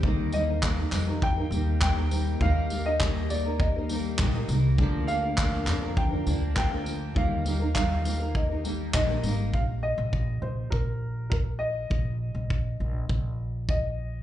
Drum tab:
TB |-x-x-x-x|-x-x-x-x|-x-x-x-x|-x-x-x-x|
CP |--xx--x-|--x---x-|--xx--x-|--x---x-|
BD |o-o-o-o-|o-o-o-o-|o-o-o-o-|o-o-o-o-|

TB |--------|--------|
CP |--------|--------|
BD |o-o-o-o-|o-o-o-o-|